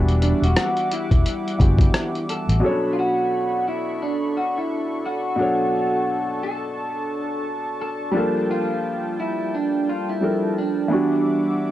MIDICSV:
0, 0, Header, 1, 6, 480
1, 0, Start_track
1, 0, Key_signature, 2, "minor"
1, 0, Tempo, 689655
1, 1828, Time_signature, 4, 2, 24, 8
1, 8152, End_track
2, 0, Start_track
2, 0, Title_t, "Analog synth pad"
2, 0, Program_c, 0, 89
2, 0, Note_on_c, 0, 55, 79
2, 0, Note_on_c, 0, 76, 72
2, 0, Note_on_c, 0, 78, 73
2, 0, Note_on_c, 0, 86, 92
2, 1809, Note_off_c, 0, 55, 0
2, 1809, Note_off_c, 0, 76, 0
2, 1809, Note_off_c, 0, 78, 0
2, 1809, Note_off_c, 0, 86, 0
2, 1830, Note_on_c, 0, 62, 73
2, 1830, Note_on_c, 0, 69, 81
2, 1830, Note_on_c, 0, 83, 77
2, 1831, Note_on_c, 0, 85, 84
2, 3730, Note_off_c, 0, 83, 0
2, 3747, Note_on_c, 0, 81, 72
2, 5641, Note_off_c, 0, 62, 0
2, 5641, Note_off_c, 0, 69, 0
2, 5641, Note_off_c, 0, 85, 0
2, 5670, Note_on_c, 0, 55, 75
2, 5671, Note_on_c, 0, 79, 66
2, 7560, Note_off_c, 0, 81, 0
2, 7570, Note_off_c, 0, 79, 0
2, 7589, Note_on_c, 0, 76, 78
2, 7589, Note_on_c, 0, 78, 66
2, 7590, Note_on_c, 0, 86, 91
2, 8152, Note_off_c, 0, 55, 0
2, 8152, Note_off_c, 0, 76, 0
2, 8152, Note_off_c, 0, 78, 0
2, 8152, Note_off_c, 0, 86, 0
2, 8152, End_track
3, 0, Start_track
3, 0, Title_t, "Clean electric guitar"
3, 0, Program_c, 1, 27
3, 159, Note_on_c, 1, 62, 83
3, 301, Note_off_c, 1, 62, 0
3, 303, Note_on_c, 1, 66, 100
3, 640, Note_on_c, 1, 64, 76
3, 643, Note_off_c, 1, 66, 0
3, 1566, Note_off_c, 1, 64, 0
3, 1601, Note_on_c, 1, 69, 96
3, 2038, Note_off_c, 1, 69, 0
3, 2041, Note_on_c, 1, 65, 77
3, 2074, Note_off_c, 1, 65, 0
3, 2081, Note_on_c, 1, 66, 99
3, 2558, Note_off_c, 1, 66, 0
3, 2560, Note_on_c, 1, 64, 80
3, 2799, Note_on_c, 1, 62, 88
3, 2801, Note_off_c, 1, 64, 0
3, 3040, Note_off_c, 1, 62, 0
3, 3042, Note_on_c, 1, 66, 90
3, 3182, Note_off_c, 1, 66, 0
3, 3185, Note_on_c, 1, 64, 87
3, 3520, Note_on_c, 1, 66, 96
3, 3525, Note_off_c, 1, 64, 0
3, 4475, Note_off_c, 1, 66, 0
3, 4478, Note_on_c, 1, 69, 94
3, 5431, Note_off_c, 1, 69, 0
3, 5440, Note_on_c, 1, 69, 97
3, 5919, Note_off_c, 1, 69, 0
3, 5922, Note_on_c, 1, 65, 97
3, 6399, Note_off_c, 1, 65, 0
3, 6402, Note_on_c, 1, 64, 87
3, 6642, Note_off_c, 1, 64, 0
3, 6643, Note_on_c, 1, 62, 90
3, 6882, Note_off_c, 1, 62, 0
3, 6886, Note_on_c, 1, 65, 91
3, 7024, Note_off_c, 1, 65, 0
3, 7025, Note_on_c, 1, 64, 87
3, 7364, Note_off_c, 1, 64, 0
3, 7366, Note_on_c, 1, 62, 85
3, 8152, Note_off_c, 1, 62, 0
3, 8152, End_track
4, 0, Start_track
4, 0, Title_t, "Felt piano"
4, 0, Program_c, 2, 0
4, 0, Note_on_c, 2, 52, 65
4, 0, Note_on_c, 2, 55, 79
4, 0, Note_on_c, 2, 59, 62
4, 0, Note_on_c, 2, 62, 67
4, 0, Note_on_c, 2, 66, 59
4, 51, Control_c, 2, 64, 127
4, 1077, Note_off_c, 2, 52, 0
4, 1082, Note_off_c, 2, 59, 0
4, 1087, Note_off_c, 2, 62, 0
4, 1092, Note_off_c, 2, 66, 0
4, 1098, Note_off_c, 2, 55, 0
4, 1103, Note_on_c, 2, 52, 46
4, 1107, Note_on_c, 2, 59, 40
4, 1112, Note_on_c, 2, 62, 39
4, 1118, Note_on_c, 2, 66, 42
4, 1124, Note_on_c, 2, 67, 51
4, 1810, Note_on_c, 2, 47, 76
4, 1820, Note_on_c, 2, 54, 73
4, 1825, Note_off_c, 2, 52, 0
4, 1828, Note_off_c, 2, 59, 0
4, 1830, Note_off_c, 2, 62, 0
4, 1830, Note_on_c, 2, 61, 57
4, 1833, Note_off_c, 2, 66, 0
4, 1836, Note_off_c, 2, 67, 0
4, 1836, Control_c, 2, 64, 0
4, 1841, Note_on_c, 2, 69, 70
4, 1852, Note_on_c, 2, 73, 87
4, 1876, Note_on_c, 2, 62, 66
4, 1883, Note_off_c, 2, 61, 0
4, 1964, Control_c, 2, 64, 127
4, 3711, Note_off_c, 2, 47, 0
4, 3716, Note_off_c, 2, 54, 0
4, 3726, Note_off_c, 2, 69, 0
4, 3730, Note_on_c, 2, 47, 71
4, 3732, Note_off_c, 2, 73, 0
4, 3741, Note_off_c, 2, 62, 0
4, 3741, Note_on_c, 2, 54, 58
4, 3751, Note_on_c, 2, 62, 66
4, 3762, Note_on_c, 2, 69, 60
4, 3773, Note_on_c, 2, 73, 74
4, 5631, Note_off_c, 2, 47, 0
4, 5637, Note_off_c, 2, 54, 0
4, 5642, Note_off_c, 2, 62, 0
4, 5647, Note_off_c, 2, 69, 0
4, 5648, Note_on_c, 2, 55, 85
4, 5652, Note_off_c, 2, 73, 0
4, 5658, Note_on_c, 2, 62, 76
4, 5669, Note_on_c, 2, 53, 76
4, 5675, Control_c, 2, 64, 0
4, 5680, Note_on_c, 2, 69, 76
4, 5690, Note_on_c, 2, 58, 88
4, 5797, Control_c, 2, 64, 127
4, 7070, Note_off_c, 2, 55, 0
4, 7075, Note_off_c, 2, 62, 0
4, 7080, Note_off_c, 2, 53, 0
4, 7086, Note_off_c, 2, 69, 0
4, 7091, Note_off_c, 2, 58, 0
4, 7106, Note_on_c, 2, 55, 42
4, 7110, Note_on_c, 2, 62, 43
4, 7116, Note_on_c, 2, 53, 43
4, 7121, Note_on_c, 2, 69, 42
4, 7127, Note_on_c, 2, 70, 58
4, 7574, Note_on_c, 2, 52, 69
4, 7585, Note_off_c, 2, 62, 0
4, 7585, Note_on_c, 2, 59, 60
4, 7587, Note_off_c, 2, 55, 0
4, 7592, Note_off_c, 2, 53, 0
4, 7594, Note_off_c, 2, 69, 0
4, 7595, Note_on_c, 2, 62, 67
4, 7597, Note_off_c, 2, 70, 0
4, 7598, Control_c, 2, 64, 0
4, 7606, Note_on_c, 2, 66, 66
4, 7616, Note_on_c, 2, 55, 68
4, 7713, Control_c, 2, 64, 127
4, 8152, Note_off_c, 2, 52, 0
4, 8152, Note_off_c, 2, 55, 0
4, 8152, Note_off_c, 2, 59, 0
4, 8152, Note_off_c, 2, 62, 0
4, 8152, Note_off_c, 2, 66, 0
4, 8152, End_track
5, 0, Start_track
5, 0, Title_t, "Fingered electric bass"
5, 0, Program_c, 3, 33
5, 0, Note_on_c, 3, 28, 123
5, 225, Note_off_c, 3, 28, 0
5, 293, Note_on_c, 3, 28, 86
5, 372, Note_off_c, 3, 28, 0
5, 776, Note_on_c, 3, 28, 81
5, 854, Note_off_c, 3, 28, 0
5, 1114, Note_on_c, 3, 30, 89
5, 1310, Note_off_c, 3, 30, 0
5, 1731, Note_on_c, 3, 33, 88
5, 1811, Note_off_c, 3, 33, 0
5, 8152, End_track
6, 0, Start_track
6, 0, Title_t, "Drums"
6, 59, Note_on_c, 9, 42, 34
6, 128, Note_off_c, 9, 42, 0
6, 153, Note_on_c, 9, 42, 62
6, 223, Note_off_c, 9, 42, 0
6, 303, Note_on_c, 9, 42, 39
6, 372, Note_off_c, 9, 42, 0
6, 392, Note_on_c, 9, 42, 83
6, 393, Note_on_c, 9, 37, 119
6, 462, Note_off_c, 9, 42, 0
6, 463, Note_off_c, 9, 37, 0
6, 534, Note_on_c, 9, 42, 29
6, 604, Note_off_c, 9, 42, 0
6, 636, Note_on_c, 9, 42, 61
6, 706, Note_off_c, 9, 42, 0
6, 774, Note_on_c, 9, 36, 85
6, 777, Note_on_c, 9, 42, 42
6, 844, Note_off_c, 9, 36, 0
6, 847, Note_off_c, 9, 42, 0
6, 876, Note_on_c, 9, 42, 81
6, 945, Note_off_c, 9, 42, 0
6, 1028, Note_on_c, 9, 42, 33
6, 1097, Note_off_c, 9, 42, 0
6, 1113, Note_on_c, 9, 36, 87
6, 1119, Note_on_c, 9, 42, 57
6, 1182, Note_off_c, 9, 36, 0
6, 1188, Note_off_c, 9, 42, 0
6, 1242, Note_on_c, 9, 36, 90
6, 1258, Note_on_c, 9, 42, 52
6, 1312, Note_off_c, 9, 36, 0
6, 1328, Note_off_c, 9, 42, 0
6, 1351, Note_on_c, 9, 37, 110
6, 1351, Note_on_c, 9, 42, 69
6, 1420, Note_off_c, 9, 37, 0
6, 1420, Note_off_c, 9, 42, 0
6, 1499, Note_on_c, 9, 42, 33
6, 1568, Note_off_c, 9, 42, 0
6, 1596, Note_on_c, 9, 42, 62
6, 1665, Note_off_c, 9, 42, 0
6, 1736, Note_on_c, 9, 42, 49
6, 1805, Note_off_c, 9, 42, 0
6, 8152, End_track
0, 0, End_of_file